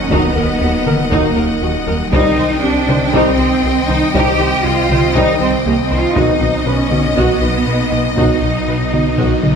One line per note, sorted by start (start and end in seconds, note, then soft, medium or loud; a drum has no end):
0.00 2.14 D#1 medium
0.00 2.13 F#3 medium
0.00 0.11 C#4 loud
0.00 2.09 D#4 medium
0.00 2.13 A#4 medium
0.00 2.08 D#5 medium
0.00 2.09 D#5 medium
0.00 2.08 F#5 medium
0.10 0.25 D#2 medium
0.10 0.19 D#2 medium
0.10 0.26 D#3 medium
0.10 0.29 D#3 medium
0.10 0.29 F#3 medium
0.10 1.12 B3 medium
0.10 0.34 D#4 medium
0.10 0.29 A#4 medium
0.10 0.29 D#5 medium
0.10 taiko loud
0.36 0.44 D#2 medium
0.36 0.51 D#2 medium
0.36 0.51 F#3 medium
0.36 0.44 A#4 medium
0.61 0.69 D#2 medium
0.61 0.76 D#2 medium
0.61 0.76 D#4 medium
0.61 0.70 F#4 medium
0.86 0.94 D#2 medium
0.86 1.02 D#3 medium
0.86 1.02 A#3 medium
0.86 0.94 A#4 medium
0.86 taiko mid medium
1.11 1.20 D#2 medium
1.11 1.27 D#2 medium
1.11 1.27 D#3 loud
1.11 1.30 D#3 medium
1.11 1.30 F#3 medium
1.11 1.36 A#3 medium
1.11 1.35 D#4 medium
1.11 1.30 A#4 medium
1.11 1.30 D#5 medium
1.11 taiko medium
1.36 1.52 D#2 medium
1.36 1.45 D#2 medium
1.36 1.52 F#3 medium
1.36 1.44 A#4 medium
1.62 1.77 D#2 medium
1.62 1.70 D#2 medium
1.62 1.77 D#4 medium
1.62 1.70 F#4 medium
1.87 2.02 D#2 medium
1.87 1.95 D#2 medium
1.87 2.03 F#3 medium
1.87 1.95 A#4 medium
2.12 2.27 C2 medium
2.12 2.21 C2 medium
2.12 6.17 C2 medium
2.12 2.28 C3 medium
2.12 2.30 D#3 medium
2.12 6.12 D#3 medium
2.12 2.30 G3 medium
2.12 6.16 G3 medium
2.12 6.16 C4 medium
2.12 2.36 D#4 medium
2.12 2.60 D#4 loud
2.12 6.16 C5 medium
2.12 2.31 C5 medium
2.12 6.12 D#5 medium
2.12 2.31 D#5 medium
2.12 6.16 G5 medium
2.12 taiko loud
2.37 2.46 C2 medium
2.37 2.53 C2 medium
2.37 2.53 D#3 medium
2.37 2.46 C5 medium
2.63 2.78 C2 medium
2.63 2.71 C2 medium
2.63 2.78 C4 medium
2.63 3.14 D4 loud
2.63 2.71 G4 medium
2.88 2.96 C2 medium
2.88 3.03 C3 medium
2.88 3.03 G3 medium
2.88 2.97 C5 medium
2.88 taiko mid medium
3.13 3.28 C2 medium
3.13 3.21 C2 loud
3.13 3.29 C3 loud
3.13 3.31 D#3 medium
3.13 3.31 G3 medium
3.13 3.89 C4 loud
3.13 3.37 D#4 medium
3.13 3.31 C5 medium
3.13 3.31 D#5 medium
3.13 taiko medium
3.38 3.54 C2 medium
3.38 3.47 C2 medium
3.38 3.53 D#3 medium
3.38 3.47 C5 medium
3.63 3.79 C2 medium
3.63 3.72 C2 medium
3.63 3.78 C4 medium
3.63 3.72 G4 medium
3.89 4.04 C2 medium
3.89 3.97 C2 medium
3.89 4.04 D#3 medium
3.89 4.14 D#4 loud
3.89 3.98 C5 medium
4.14 4.29 C2 medium
4.14 4.23 C2 loud
4.14 4.29 C3 medium
4.14 4.32 D#3 medium
4.14 4.32 G3 medium
4.14 4.38 D#4 medium
4.14 4.64 G4 loud
4.14 4.32 C5 medium
4.14 4.32 D#5 medium
4.14 taiko loud
4.39 4.54 C2 medium
4.39 4.48 C2 medium
4.39 4.54 D#3 medium
4.39 4.48 C5 medium
4.64 4.80 C2 medium
4.64 4.73 C2 medium
4.64 4.80 C4 medium
4.64 5.15 F4 loud
4.64 4.74 G4 medium
4.90 4.98 C2 medium
4.90 5.05 C3 medium
4.90 5.05 G3 medium
4.90 4.99 C5 medium
4.90 taiko mid medium
5.15 5.30 C2 medium
5.15 5.24 C2 medium
5.15 5.30 C3 loud
5.15 5.33 D#3 medium
5.15 5.33 G3 medium
5.15 5.41 D#4 loud
5.15 5.39 D#4 medium
5.15 5.33 C5 medium
5.15 5.33 D#5 medium
5.15 taiko medium
5.40 5.48 C2 medium
5.40 5.56 C2 medium
5.40 5.55 D#3 medium
5.40 5.65 C4 loud
5.40 5.48 C5 medium
5.65 5.73 C2 medium
5.65 5.81 C2 medium
5.65 5.82 A#3 loud
5.65 5.81 C4 medium
5.65 5.74 G4 medium
5.84 5.99 C4 loud
5.90 5.98 C2 medium
5.90 6.06 C2 medium
5.90 6.06 D#3 medium
5.90 5.98 C5 medium
6.00 6.16 F4 loud
6.15 6.23 B1 medium
6.15 9.56 B1 medium
6.15 6.31 B2 medium
6.15 6.34 D#3 medium
6.15 9.56 F#3 medium
6.15 6.34 F#3 medium
6.15 9.56 B3 medium
6.15 6.31 B3 medium
6.15 9.56 D#4 medium
6.15 6.66 D#4 medium
6.15 6.39 F#4 medium
6.15 6.34 B4 medium
6.15 9.56 D#5 medium
6.15 6.34 D#5 medium
6.15 9.56 D#5 medium
6.15 taiko loud
6.40 6.48 B1 medium
6.40 6.56 B2 medium
6.40 6.56 D#4 medium
6.40 6.50 D#5 medium
6.66 6.74 B1 medium
6.66 6.81 B2 medium
6.66 7.17 C#4 loud
6.66 6.82 B4 medium
6.66 6.75 B4 medium
6.91 6.99 B1 medium
6.91 7.06 B3 medium
6.91 7.07 F#4 medium
6.91 7.00 D#5 medium
6.91 taiko mid medium
7.16 7.24 B1 medium
7.16 7.32 B2 medium
7.16 7.35 D#3 medium
7.16 7.34 F#3 medium
7.16 8.18 B3 loud
7.16 7.32 B3 medium
7.16 7.41 F#4 medium
7.16 7.35 B4 medium
7.16 7.35 D#5 medium
7.16 taiko medium
7.42 7.50 B1 medium
7.42 7.57 B2 medium
7.42 7.57 D#4 medium
7.42 7.50 D#5 medium
7.67 7.75 B1 soft
7.67 7.82 B2 medium
7.67 7.82 B4 medium
7.67 7.76 B4 medium
7.92 8.00 B1 medium
7.92 8.07 B2 medium
7.92 8.07 D#4 medium
7.92 8.00 D#5 medium
8.16 8.25 B1 medium
8.16 8.32 B2 medium
8.16 8.34 D#3 medium
8.16 8.34 F#3 medium
8.16 8.33 B3 medium
8.16 9.56 D#4 medium
8.16 8.41 F#4 medium
8.16 8.35 B4 medium
8.16 8.35 D#5 medium
8.16 taiko loud
8.42 8.51 B1 soft
8.42 8.58 B2 medium
8.42 8.58 D#4 medium
8.42 8.51 D#5 soft
8.68 8.76 B1 medium
8.68 8.83 B2 medium
8.68 8.76 B4 soft
8.68 8.83 B4 medium
8.93 9.01 B1 soft
8.93 9.08 B3 medium
8.93 9.09 F#4 medium
8.93 9.02 D#5 soft
8.93 taiko mid medium
9.18 9.27 B1 medium
9.18 9.33 B2 medium
9.18 9.36 D#3 medium
9.18 9.36 F#3 medium
9.18 9.33 B3 medium
9.18 9.42 F#4 medium
9.18 9.36 B4 medium
9.18 9.36 D#5 medium
9.18 taiko medium
9.43 9.52 B1 soft
9.43 9.56 B2 medium
9.43 9.56 D#4 medium
9.43 9.51 D#5 medium
9.43 taiko mid medium